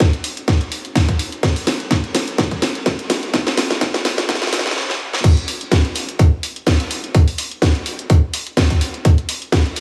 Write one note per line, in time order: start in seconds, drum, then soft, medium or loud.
0.00 kick loud
0.00 snare medium
0.00 closed hi-hat medium
0.13 closed hi-hat soft
0.24 open hi-hat loud
0.37 closed hi-hat medium
0.48 kick loud
0.48 snare medium
0.48 closed hi-hat medium
0.61 closed hi-hat soft
0.72 open hi-hat loud
0.85 closed hi-hat soft
0.95 kick loud
0.95 snare medium
0.95 open hi-hat medium
1.08 kick medium
1.08 closed hi-hat medium
1.19 open hi-hat loud
1.32 closed hi-hat soft
1.43 kick loud
1.43 snare medium
1.43 closed hi-hat medium
1.56 open hi-hat medium
1.67 snare medium
1.67 open hi-hat loud
1.80 closed hi-hat soft
1.91 kick loud
1.91 snare medium
1.91 closed hi-hat medium
2.04 closed hi-hat soft
2.15 snare medium
2.15 open hi-hat loud
2.28 closed hi-hat medium
2.38 kick loud
2.38 snare medium
2.38 closed hi-hat medium
2.51 kick medium
2.51 closed hi-hat soft
2.62 snare medium
2.62 open hi-hat loud
2.75 closed hi-hat soft
2.86 kick loud
2.86 snare medium
2.86 closed hi-hat medium
2.99 closed hi-hat medium
3.10 snare medium
3.10 open hi-hat loud
3.23 closed hi-hat soft
3.34 kick loud
3.34 snare medium
3.34 closed hi-hat medium
3.47 snare medium
3.47 open hi-hat medium
3.57 snare loud
3.57 open hi-hat loud
3.70 snare medium
3.70 closed hi-hat soft
3.81 kick loud
3.81 snare medium
3.81 closed hi-hat medium
3.94 snare medium
3.94 closed hi-hat soft
4.05 snare loud
4.05 open hi-hat loud
4.18 snare medium
4.18 closed hi-hat medium
4.29 kick loud
4.29 snare loud
4.29 closed hi-hat medium
4.35 snare medium
4.42 snare medium
4.42 closed hi-hat soft
4.47 snare medium
4.53 snare loud
4.53 open hi-hat loud
4.59 snare loud
4.66 snare medium
4.66 closed hi-hat soft
4.71 snare medium
4.77 snare medium
4.90 snare medium
5.13 snare medium
5.24 kick loud
5.24 closed hi-hat loud
5.24 closed hi-hat medium
5.24 crash loud
5.37 closed hi-hat soft
5.48 closed hi-hat medium
5.48 open hi-hat loud
5.61 closed hi-hat soft
5.71 kick loud
5.71 snare loud
5.71 closed hi-hat medium
5.85 closed hi-hat soft
5.95 snare soft
5.95 closed hi-hat medium
5.95 open hi-hat loud
6.09 closed hi-hat medium
6.19 kick loud
6.19 closed hi-hat medium
6.43 closed hi-hat medium
6.43 open hi-hat loud
6.56 closed hi-hat soft
6.66 kick loud
6.66 snare loud
6.66 closed hi-hat medium
6.80 snare soft
6.80 closed hi-hat medium
6.91 closed hi-hat medium
6.91 open hi-hat loud
7.04 closed hi-hat soft
7.15 kick loud
7.15 closed hi-hat loud
7.15 closed hi-hat medium
7.28 open hi-hat medium
7.38 closed hi-hat medium
7.38 open hi-hat loud
7.51 closed hi-hat soft
7.62 kick loud
7.62 snare loud
7.62 closed hi-hat medium
7.75 closed hi-hat soft
7.86 closed hi-hat medium
7.86 open hi-hat loud
7.99 closed hi-hat medium
8.10 kick loud
8.10 closed hi-hat medium
8.33 closed hi-hat medium
8.33 open hi-hat loud
8.47 closed hi-hat soft
8.57 kick loud
8.57 snare loud
8.57 closed hi-hat medium
8.70 kick medium
8.70 closed hi-hat medium
8.70 closed hi-hat soft
8.81 closed hi-hat medium
8.81 open hi-hat loud
8.94 closed hi-hat soft
9.05 kick loud
9.05 closed hi-hat medium
9.18 closed hi-hat soft
9.29 closed hi-hat medium
9.29 open hi-hat loud
9.42 closed hi-hat soft
9.52 kick loud
9.52 snare loud
9.52 closed hi-hat medium
9.66 closed hi-hat soft
9.76 snare soft
9.76 closed hi-hat medium
9.76 open hi-hat loud